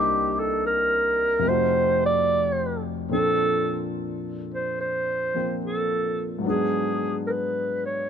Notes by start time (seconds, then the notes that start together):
Already playing: C2 C3 A#3 D4 D#4 G4
0.39 A4
0.66 A#4
1.39 F2 C3
1.44 A3 D#4
1.49 F#4 C5
2.06 D5
3.09 A#2 F3 C4 D4 A4
3.14 A4
4.54 C5
4.81 C5
5.34 F3 A#3 C4 F4
5.65 A4
6.39 G#2 F#3
6.44 B3 D4 G#4
6.50 G#4
7.27 A#4 B4
7.86 C#5